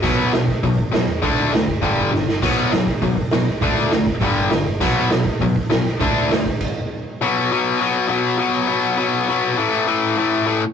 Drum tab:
CC |x-------|--------|x-------|--------|
HH |--o-o-o-|o-o-o---|--o-o-o-|o-o-o-o-|
SD |--o---o-|--o---oo|--o---o-|--o---o-|
BD |o--ooo--|o--ooo--|o--ooo--|o--ooo--|

CC |x-------|----x---|--------|--------|
HH |--o-o-o-|o-o-----|--------|--------|
SD |--o---o-|--o-----|--------|--------|
BD |o--ooo--|o--oo---|--------|--------|

CC |--------|
HH |--------|
SD |--------|
BD |--------|